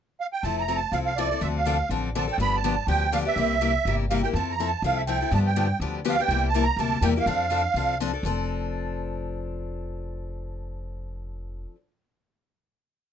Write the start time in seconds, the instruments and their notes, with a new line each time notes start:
0.21 accordion F5
0.33 accordion G5
0.43 upright bass F1, steel-string acoustic guitar F3 C4 E4 A4, accordion A5
0.58 accordion A5 A#5
0.68 steel-string acoustic guitar F3 C4 E4 A4
0.76 accordion A5
0.92 upright bass C2, steel-string acoustic guitar F3 C4 E4 A4, accordion F5
1.06 accordion F5
1.17 steel-string acoustic guitar F3 C4 E4 A4, accordion D5
1.32 steel-string acoustic guitar C4 E4 A4
1.41 upright bass D2, steel-string acoustic guitar D3 F3 C4 D4 A4, accordion E5
1.57 accordion F5
1.65 steel-string acoustic guitar D3 F3 C4 D4 A4
1.89 upright bass A1, steel-string acoustic guitar D3 F3 C4 D4 A4
2.15 steel-string acoustic guitar D3 F3 C4 D4 A4, accordion A5
2.27 steel-string acoustic guitar C4 D4 A4
2.32 accordion G5
2.38 upright bass G1, steel-string acoustic guitar D3 F3 B3 D4 G4, accordion B5
2.57 accordion A5
2.64 steel-string acoustic guitar D3 F3 B3 D4 G4
2.87 upright bass D2, steel-string acoustic guitar D3 F3 B3 D4 G4, accordion G5
3.12 steel-string acoustic guitar D3 F3 B3 D4 G4, accordion F5
3.25 steel-string acoustic guitar B3 D4 G4, accordion E5
3.36 upright bass C2, steel-string acoustic guitar C3 G3 A#3 E4 G4
3.61 steel-string acoustic guitar C3 G3 A#3 E4 G4
3.85 upright bass G1, steel-string acoustic guitar C3 G3 A#3 E4 G4
4.10 steel-string acoustic guitar C3 G3 A#3 E4 G4, accordion F5
4.24 steel-string acoustic guitar A#3 E4 G4, accordion G5
4.33 upright bass F2, steel-string acoustic guitar F3 C4 E4 A4, accordion A5
4.51 accordion A#5
4.59 steel-string acoustic guitar F3 C4 E4 A4
4.66 accordion A5
4.82 upright bass C2, steel-string acoustic guitar F3 C4 E4 A4, accordion F5
4.97 accordion E5
5.07 steel-string acoustic guitar F3 C4 E4 A4, accordion G5
5.21 steel-string acoustic guitar C4 E4 A4
5.31 upright bass G2, steel-string acoustic guitar D3 F3 B3 D4 G4, accordion A5
5.47 accordion G5
5.56 steel-string acoustic guitar D3 F3 B3 D4 G4
5.80 upright bass D2, steel-string acoustic guitar D3 F3 B3 D4 G4
6.05 steel-string acoustic guitar D3 F3 B3 D4 G4
6.09 accordion F5
6.18 steel-string acoustic guitar B3 D4 G4, accordion G5
6.28 upright bass C2, steel-string acoustic guitar C3 G3 A#3 E4 G4
6.49 accordion A5
6.54 steel-string acoustic guitar C3 G3 A#3 E4 G4
6.63 accordion A#5
6.76 upright bass D2, steel-string acoustic guitar C3 G3 A#3 E4 G4, accordion A5
7.01 upright bass E2, steel-string acoustic guitar C3 G3 A#3 E4 G4, accordion G5
7.16 steel-string acoustic guitar A#3 E4 G4, accordion F5
7.26 upright bass F2, steel-string acoustic guitar F3 C4 D4 A4
7.50 steel-string acoustic guitar F3 C4 D4 A4
7.74 upright bass C2, steel-string acoustic guitar F3 C4 D4 A4
8.00 steel-string acoustic guitar F3 C4 D4 A4
8.13 steel-string acoustic guitar C4 D4 A4
8.23 upright bass F1, steel-string acoustic guitar F3 C4 D4 A4